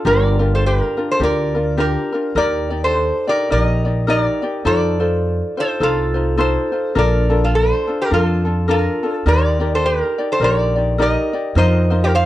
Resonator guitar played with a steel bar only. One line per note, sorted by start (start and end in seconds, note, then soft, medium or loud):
0.07 0.49 A#4 medium
0.07 0.54 D5 medium
0.55 0.64 A4 medium
0.55 0.65 C5 medium
0.66 1.08 G4 medium
0.66 1.12 A#4 medium
1.11 1.22 A4 medium
1.11 1.22 C5 medium
1.23 1.76 A#4 medium
1.23 1.81 D5 medium
1.80 2.33 G4 medium
1.80 2.37 A#4 medium
2.38 2.80 A#4 medium
2.38 2.84 D5 medium
2.84 3.26 A4 medium
2.84 3.29 C5 medium
3.29 3.50 A#4 medium
3.29 3.52 D5 medium
3.52 4.05 A#4 medium
3.52 3.63 D5 medium
3.63 4.09 D#5 medium
4.10 4.63 A#4 medium
4.10 4.21 D#5 medium
4.21 4.66 D5 medium
4.67 5.55 A4 medium
4.67 5.61 D5 medium
5.60 5.81 A4 medium
5.60 5.82 C5 medium
5.83 6.36 F4 medium
5.83 6.39 A4 medium
6.40 6.93 A4 medium
6.40 6.98 C5 medium
6.99 7.40 A#4 medium
6.99 7.44 D5 medium
7.44 7.54 F4 medium
7.44 7.54 A4 medium
7.55 7.97 A4 medium
7.55 8.02 C5 medium
8.02 8.11 G4 medium
8.02 8.12 A#4 medium
8.14 8.66 F4 medium
8.14 8.25 A#4 medium
8.25 8.71 A4 medium
8.71 9.23 F4 medium
8.71 9.13 A#4 medium
9.13 9.27 A4 medium
9.28 9.70 A#4 medium
9.28 9.74 D5 medium
9.75 9.84 A4 medium
9.75 9.85 C5 medium
9.86 10.27 G4 medium
9.86 10.30 A#4 medium
10.32 10.41 A4 medium
10.32 10.43 C5 medium
10.44 10.96 A#4 medium
10.44 11.02 D5 medium
11.02 11.54 A#4 medium
11.02 11.57 D#5 medium
11.58 12.00 C5 medium
11.58 12.04 D#5 loud
12.04 12.14 G4 medium
12.04 12.14 A#4 medium
12.15 12.26 C5 medium
12.15 12.26 F5 loud